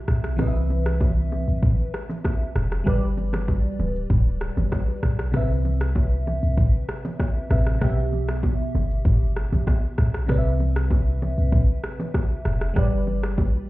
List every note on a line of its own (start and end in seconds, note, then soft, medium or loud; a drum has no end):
0.00 0.34 B2 medium
0.00 0.35 B3 medium
0.00 0.36 G4 medium
0.00 0.36 E5 medium
0.08 0.35 B1 loud
0.08 cross-stick medium
0.08 low conga medium
0.08 shaker medium
0.24 cross-stick medium
0.24 shaker medium
0.37 1.44 C2 loud
0.37 2.81 E3 medium
0.37 2.82 C4 medium
0.37 2.83 B4 medium
0.37 kick loud
0.37 cross-stick medium
0.37 low conga medium
0.37 shaker medium
0.42 0.47 D#5 medium
0.48 2.87 E5 medium
0.70 low bongo medium
0.70 shaker medium
0.86 cross-stick loud
0.86 shaker medium
1.01 kick medium
1.01 high bongo medium
1.01 shaker medium
1.32 low bongo medium
1.32 shaker medium
1.48 1.75 B1 medium
1.48 shaker medium
1.63 kick loud
1.63 low conga medium
1.63 shaker medium
1.94 cross-stick medium
1.94 shaker medium
2.09 low bongo medium
2.09 shaker medium
2.24 kick medium
2.24 cross-stick medium
2.24 high bongo medium
2.24 shaker medium
2.55 2.82 F1 loud
2.55 cross-stick medium
2.55 low conga medium
2.55 shaker medium
2.72 cross-stick medium
2.72 shaker medium
2.84 3.61 G1 loud
2.84 5.29 G3 medium
2.84 5.30 G4 medium
2.84 5.30 B4 medium
2.84 kick loud
2.84 cross-stick medium
2.84 low conga medium
2.84 shaker medium
2.89 5.31 D5 medium
3.17 low bongo medium
3.17 shaker medium
3.33 cross-stick loud
3.33 low bongo medium
3.33 shaker medium
3.48 kick medium
3.48 high bongo medium
3.48 shaker medium
3.79 4.06 D1 medium
3.79 low bongo medium
3.79 shaker soft
3.96 shaker medium
4.10 4.51 D1 loud
4.10 kick loud
4.10 high bongo medium
4.10 low conga medium
4.10 shaker medium
4.41 cross-stick medium
4.41 shaker medium
4.57 4.70 G1 medium
4.57 low bongo medium
4.57 shaker medium
4.72 kick medium
4.72 cross-stick medium
4.72 high bongo medium
4.72 shaker medium
5.03 5.30 B1 medium
5.03 cross-stick medium
5.03 low conga medium
5.03 shaker medium
5.19 cross-stick medium
5.19 shaker medium
5.32 6.39 C2 loud
5.32 7.45 C3 medium
5.32 7.46 C4 medium
5.32 7.47 B4 medium
5.32 kick loud
5.32 cross-stick loud
5.32 low conga medium
5.32 shaker medium
5.37 7.48 E5 medium
5.65 low bongo medium
5.65 shaker medium
5.81 cross-stick loud
5.81 shaker medium
5.96 kick medium
5.96 high bongo medium
5.96 shaker medium
6.27 low bongo medium
6.27 shaker medium
6.43 6.70 C2 medium
6.43 shaker medium
6.57 kick loud
6.57 low conga medium
6.57 shaker medium
6.89 cross-stick medium
6.89 shaker medium
7.05 low bongo medium
7.05 shaker medium
7.20 kick medium
7.20 cross-stick medium
7.20 high bongo medium
7.20 shaker medium
7.50 7.77 A1 loud
7.50 7.81 C3 medium
7.50 7.81 C4 medium
7.50 7.82 B4 medium
7.50 7.82 E5 medium
7.50 cross-stick medium
7.50 low conga medium
7.50 shaker medium
7.67 cross-stick medium
7.67 shaker medium
7.79 8.55 B1 loud
7.79 10.24 B2 medium
7.79 10.25 B3 medium
7.79 10.25 G4 medium
7.79 kick loud
7.79 cross-stick loud
7.79 low conga medium
7.79 shaker medium
7.84 10.26 E5 medium
8.13 low bongo medium
8.13 shaker medium
8.29 cross-stick loud
8.29 shaker medium
8.43 kick medium
8.43 high bongo medium
8.43 shaker medium
8.75 9.01 G1 medium
8.75 low bongo medium
8.75 shaker medium
8.91 shaker medium
9.05 9.46 G1 loud
9.05 kick loud
9.05 low conga medium
9.05 shaker medium
9.36 cross-stick medium
9.36 shaker medium
9.53 9.65 B1 medium
9.53 low bongo medium
9.53 shaker medium
9.67 kick medium
9.67 cross-stick medium
9.67 high bongo medium
9.67 shaker medium
9.98 10.25 B1 loud
9.98 cross-stick medium
9.98 low conga medium
9.98 shaker medium
10.14 cross-stick medium
10.14 shaker medium
10.27 11.34 C2 loud
10.27 12.71 C3 medium
10.27 12.72 C4 medium
10.27 12.73 B4 medium
10.27 kick loud
10.27 cross-stick loud
10.27 low conga medium
10.27 shaker medium
10.32 10.37 D5 medium
10.38 12.77 E5 medium
10.60 low bongo medium
10.60 shaker medium
10.76 cross-stick loud
10.76 shaker medium
10.91 kick medium
10.91 high bongo medium
10.91 shaker medium
11.22 low bongo medium
11.22 shaker soft
11.38 11.65 C2 medium
11.38 shaker medium
11.52 kick loud
11.52 low conga medium
11.52 shaker medium
11.83 cross-stick medium
11.83 shaker medium
12.00 low bongo medium
12.00 shaker medium
12.14 kick medium
12.14 cross-stick medium
12.14 high bongo medium
12.14 shaker medium
12.45 12.72 F1 medium
12.45 cross-stick medium
12.45 low conga medium
12.45 shaker medium
12.61 cross-stick medium
12.61 shaker medium
12.74 13.50 G1 loud
12.74 13.70 G3 medium
12.74 13.70 G4 medium
12.74 13.70 B4 medium
12.74 kick loud
12.74 cross-stick loud
12.74 low conga medium
12.74 shaker medium
12.79 13.70 D5 medium
13.07 low bongo medium
13.07 shaker medium
13.23 cross-stick loud
13.23 shaker medium
13.38 kick medium
13.38 high bongo medium
13.38 shaker medium